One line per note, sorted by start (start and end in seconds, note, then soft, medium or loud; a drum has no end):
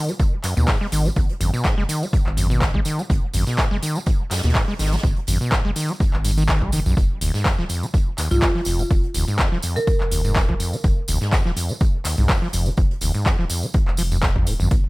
0.08 0.12 G#3 medium
0.08 tambourine medium
0.19 0.24 G#2 medium
0.19 kick loud
0.19 closed hi-hat medium
0.19 tambourine soft
0.44 0.55 F#2 medium
0.44 clap soft
0.44 closed hi-hat medium
0.44 open hi-hat loud
0.44 tambourine medium
0.57 0.65 D#2 medium
0.57 0.70 B2 medium
0.57 tambourine soft
0.67 0.79 G#2 medium
0.67 kick loud
0.67 snare loud
0.67 clap loud
0.67 open hi-hat medium
0.67 tambourine soft
0.81 0.87 G#3 loud
0.81 snare soft
0.92 1.09 G#1 medium
0.92 1.07 D#3 medium
0.92 closed hi-hat medium
0.92 open hi-hat loud
0.92 tambourine medium
1.05 1.09 G#3 medium
1.05 closed hi-hat soft
1.05 tambourine soft
1.16 1.25 G#1 loud
1.16 1.21 G#2 medium
1.16 kick loud
1.16 closed hi-hat medium
1.16 tambourine soft
1.29 closed hi-hat soft
1.40 1.49 G#1 loud
1.40 1.51 F#2 medium
1.40 closed hi-hat medium
1.40 open hi-hat medium
1.40 tambourine medium
1.53 1.66 B2 medium
1.53 tambourine soft
1.64 1.75 G#2 medium
1.64 kick loud
1.64 snare loud
1.64 clap loud
1.64 closed hi-hat medium
1.64 tambourine soft
1.78 1.85 F#1 medium
1.78 1.84 G#3 loud
1.78 snare soft
1.89 2.03 D#3 medium
1.89 closed hi-hat medium
1.89 open hi-hat medium
1.89 tambourine medium
2.02 2.06 G#3 medium
2.02 tambourine soft
2.13 2.17 G#2 medium
2.13 kick loud
2.13 closed hi-hat medium
2.13 tambourine soft
2.26 2.80 G#1 medium
2.26 clap soft
2.37 2.48 F#2 medium
2.37 closed hi-hat medium
2.37 open hi-hat loud
2.37 tambourine medium
2.50 2.63 B2 medium
2.50 tambourine soft
2.61 2.72 G#2 medium
2.61 kick loud
2.61 snare loud
2.61 clap loud
2.61 closed hi-hat medium
2.61 tambourine soft
2.74 2.81 G#3 loud
2.74 kick medium
2.85 3.00 D#3 medium
2.85 closed hi-hat medium
2.85 open hi-hat loud
2.85 tambourine medium
2.98 3.02 G#3 medium
2.98 tambourine soft
3.10 3.19 G#1 loud
3.10 3.14 G#2 medium
3.10 kick loud
3.10 closed hi-hat medium
3.10 tambourine soft
3.33 3.43 G#1 loud
3.33 3.45 F#2 medium
3.33 closed hi-hat medium
3.33 open hi-hat medium
3.33 tambourine medium
3.47 3.60 B2 medium
3.47 snare medium
3.47 tambourine medium
3.58 3.69 G#2 medium
3.58 kick loud
3.58 snare loud
3.58 clap loud
3.58 closed hi-hat medium
3.58 tambourine soft
3.71 3.79 F#1 loud
3.71 3.77 G#3 loud
3.71 snare soft
3.82 3.97 D#3 medium
3.82 closed hi-hat medium
3.82 open hi-hat medium
3.82 tambourine medium
3.95 3.99 G#3 medium
3.95 tambourine soft
4.06 4.11 G#2 medium
4.06 kick loud
4.06 closed hi-hat medium
4.06 tambourine soft
4.31 4.42 F#2 medium
4.31 snare medium
4.31 clap soft
4.31 closed hi-hat medium
4.31 open hi-hat loud
4.31 tambourine medium
4.37 snare medium
4.37 closed hi-hat medium
4.43 4.52 D#2 medium
4.43 4.56 B2 medium
4.43 snare medium
4.43 closed hi-hat medium
4.43 tambourine soft
4.49 snare medium
4.49 closed hi-hat medium
4.55 4.66 G#2 medium
4.55 kick loud
4.55 snare loud
4.55 clap loud
4.55 open hi-hat medium
4.55 tambourine soft
4.68 4.74 G#3 loud
4.68 snare soft
4.79 4.96 G#1 medium
4.79 4.94 D#3 medium
4.79 snare medium
4.79 closed hi-hat medium
4.79 open hi-hat medium
4.79 tambourine medium
4.85 snare medium
4.85 closed hi-hat medium
4.91 4.96 G#3 medium
4.91 snare medium
4.91 closed hi-hat medium
4.91 tambourine soft
4.97 snare medium
4.97 closed hi-hat medium
5.03 5.12 G#1 loud
5.03 5.08 G#2 medium
5.03 kick loud
5.03 closed hi-hat medium
5.03 tambourine soft
5.16 closed hi-hat soft
5.27 5.37 G#1 loud
5.27 5.38 F#2 medium
5.27 closed hi-hat medium
5.27 open hi-hat loud
5.27 tambourine medium
5.41 5.53 B2 medium
5.41 tambourine medium
5.52 5.63 G#2 medium
5.52 kick loud
5.52 snare loud
5.52 clap loud
5.52 closed hi-hat medium
5.65 5.73 F#1 loud
5.65 5.71 G#3 loud
5.65 snare soft
5.76 5.91 D#3 medium
5.76 closed hi-hat medium
5.76 open hi-hat medium
5.76 tambourine medium
5.88 5.93 G#3 medium
5.88 tambourine soft
6.00 6.05 G#2 medium
6.00 kick loud
6.00 closed hi-hat medium
6.00 tambourine soft
6.13 6.61 G#1 medium
6.13 clap soft
6.24 6.32 G#2 medium
6.24 closed hi-hat medium
6.24 open hi-hat loud
6.24 tambourine medium
6.38 6.44 D#3 medium
6.38 tambourine soft
6.48 6.63 D#3 medium
6.48 kick loud
6.48 snare loud
6.48 clap loud
6.48 closed hi-hat medium
6.62 6.69 B1 medium
6.62 6.71 G#3 medium
6.62 kick medium
6.72 6.82 F#1 medium
6.72 6.80 D#3 loud
6.72 closed hi-hat medium
6.72 open hi-hat loud
6.72 tambourine medium
6.86 6.94 B1 loud
6.86 6.95 F#2 medium
6.86 tambourine medium
6.97 7.06 F1 medium
6.97 kick loud
6.97 closed hi-hat medium
6.97 tambourine soft
7.21 7.30 F1 loud
7.21 7.32 D#2 medium
7.21 closed hi-hat medium
7.21 open hi-hat loud
7.21 tambourine medium
7.34 7.47 G#2 medium
7.34 snare medium
7.34 tambourine soft
7.45 7.56 F2 medium
7.45 kick loud
7.45 snare loud
7.45 clap loud
7.45 closed hi-hat medium
7.45 tambourine soft
7.58 7.66 D#1 medium
7.58 7.65 F3 loud
7.58 snare medium
7.69 7.84 F2 medium
7.69 closed hi-hat medium
7.69 open hi-hat loud
7.69 tambourine medium
7.83 7.86 F3 medium
7.83 tambourine soft
7.94 7.98 F2 medium
7.94 kick loud
7.94 closed hi-hat medium
7.94 tambourine soft
8.18 8.29 D#2 medium
8.18 clap soft
8.18 closed hi-hat medium
8.18 open hi-hat loud
8.18 tambourine medium
8.31 8.39 C2 medium
8.31 8.44 G#2 medium
8.31 8.48 F4 medium
8.31 tambourine medium
8.41 8.53 F2 medium
8.41 kick loud
8.41 snare loud
8.41 clap loud
8.41 open hi-hat medium
8.41 tambourine soft
8.55 8.61 F3 loud
8.55 snare soft
8.65 8.84 F1 medium
8.65 8.81 F2 medium
8.65 closed hi-hat medium
8.65 open hi-hat loud
8.65 tambourine medium
8.78 8.83 F3 medium
8.78 closed hi-hat soft
8.78 tambourine medium
8.91 8.99 F1 loud
8.91 8.95 F2 medium
8.91 kick loud
8.91 closed hi-hat medium
8.91 tambourine soft
9.03 closed hi-hat soft
9.14 9.24 F1 loud
9.14 9.25 D#2 medium
9.14 closed hi-hat medium
9.14 open hi-hat loud
9.14 tambourine medium
9.28 9.40 G#2 medium
9.28 tambourine medium
9.38 9.50 F2 medium
9.38 kick loud
9.38 snare loud
9.38 clap loud
9.38 closed hi-hat medium
9.38 tambourine soft
9.52 9.60 D#1 loud
9.52 9.58 F3 loud
9.52 snare soft
9.62 9.78 F2 medium
9.62 closed hi-hat medium
9.62 open hi-hat loud
9.62 tambourine medium
9.76 9.80 F3 medium
9.76 10.11 A#4 medium
9.76 tambourine medium
9.87 9.92 F2 medium
9.87 kick loud
9.87 closed hi-hat medium
9.87 tambourine soft
10.00 10.54 F1 medium
10.00 clap soft
10.11 10.22 D#2 medium
10.11 closed hi-hat medium
10.11 open hi-hat loud
10.11 tambourine loud
10.24 10.37 G#2 medium
10.24 tambourine medium
10.36 10.46 F2 medium
10.36 kick loud
10.36 snare loud
10.36 clap loud
10.36 closed hi-hat medium
10.36 tambourine soft
10.48 10.55 F3 loud
10.48 kick medium
10.60 10.74 F2 medium
10.60 closed hi-hat medium
10.60 open hi-hat loud
10.60 tambourine medium
10.73 10.77 F3 medium
10.73 tambourine medium
10.84 10.93 F1 loud
10.84 10.88 F2 medium
10.84 kick loud
10.84 closed hi-hat medium
10.84 tambourine soft
11.08 11.17 F1 loud
11.08 11.19 D#2 medium
11.08 closed hi-hat medium
11.08 open hi-hat loud
11.08 tambourine medium
11.21 11.34 G#2 medium
11.21 snare medium
11.21 tambourine soft
11.32 11.43 F2 medium
11.32 kick loud
11.32 snare loud
11.32 clap loud
11.32 closed hi-hat medium
11.32 tambourine soft
11.45 11.53 D#1 loud
11.45 11.52 F3 loud
11.45 snare medium
11.57 11.71 F2 medium
11.57 closed hi-hat medium
11.57 open hi-hat loud
11.57 tambourine medium
11.69 11.73 F3 medium
11.69 tambourine medium
11.80 11.85 F2 medium
11.80 kick loud
11.80 closed hi-hat medium
11.80 tambourine soft
12.05 12.16 D#2 medium
12.05 clap soft
12.05 closed hi-hat medium
12.05 open hi-hat loud
12.05 tambourine medium
12.17 12.26 C2 medium
12.17 12.31 G#2 medium
12.17 tambourine medium
12.29 12.40 F2 medium
12.29 kick loud
12.29 snare loud
12.29 clap loud
12.29 open hi-hat medium
12.29 tambourine soft
12.42 12.48 F3 loud
12.42 snare soft
12.53 12.71 F1 medium
12.53 12.68 F2 medium
12.53 closed hi-hat medium
12.53 open hi-hat loud
12.53 tambourine medium
12.66 12.70 F3 medium
12.66 closed hi-hat soft
12.66 tambourine medium
12.77 12.87 F1 loud
12.77 12.82 F2 medium
12.77 kick loud
12.77 closed hi-hat medium
12.77 tambourine soft
12.91 closed hi-hat soft
13.01 13.11 F1 loud
13.01 13.13 D#2 medium
13.01 closed hi-hat medium
13.01 open hi-hat loud
13.01 tambourine medium
13.15 13.27 G#2 medium
13.15 tambourine medium
13.25 13.37 F2 medium
13.25 kick loud
13.25 snare loud
13.25 clap loud
13.25 closed hi-hat medium
13.25 tambourine soft
13.39 13.47 D#1 medium
13.39 13.45 F3 loud
13.39 snare soft
13.50 13.65 F2 medium
13.50 closed hi-hat medium
13.50 open hi-hat loud
13.50 tambourine loud
13.63 13.67 F3 medium
13.63 tambourine medium
13.74 13.79 F2 medium
13.74 kick loud
13.74 closed hi-hat medium
13.74 tambourine soft
13.87 14.35 F1 medium
13.87 clap soft
13.97 14.03 F3 medium
13.97 closed hi-hat medium
13.97 open hi-hat loud
13.97 tambourine loud
14.11 14.18 F2 medium
14.11 tambourine medium
14.22 14.30 F2 medium
14.22 kick loud
14.22 snare loud
14.22 clap loud
14.22 closed hi-hat medium
14.22 tambourine soft
14.35 14.43 G#1 medium
14.35 14.48 F2 loud
14.35 kick medium
14.46 14.56 D#1 medium
14.46 14.54 A#2 medium
14.46 closed hi-hat medium
14.46 open hi-hat loud
14.46 tambourine medium
14.60 14.68 G#1 loud
14.60 14.69 F#2 loud
14.60 tambourine medium
14.71 14.80 G#1 loud
14.71 14.75 G#2 medium
14.71 kick loud
14.71 closed hi-hat medium
14.71 closed hi-hat soft
14.71 tambourine soft